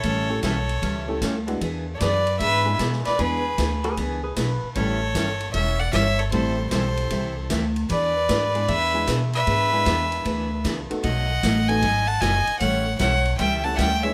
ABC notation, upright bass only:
X:1
M:4/4
L:1/8
Q:"Swing" 1/4=153
K:Emix
V:1 name="Upright bass" clef=bass
A,,,2 B,,,2 C,,2 D,,2 | E,,2 F,,2 G,,2 B,, z | E,,2 D,,2 C,,2 B,,, z | A,,,2 =G,,,2 E,,,2 G,,,2 |
A,,,2 B,,,2 =C,,2 D,,2 | E,,2 G,,2 E,,2 B,,2 | G,,2 E,,2 D,,2 C,, z | B,,,2 A,,,2 G,,,2 F,,, z |
A,,,2 B,,,2 C,,2 D,,2 |]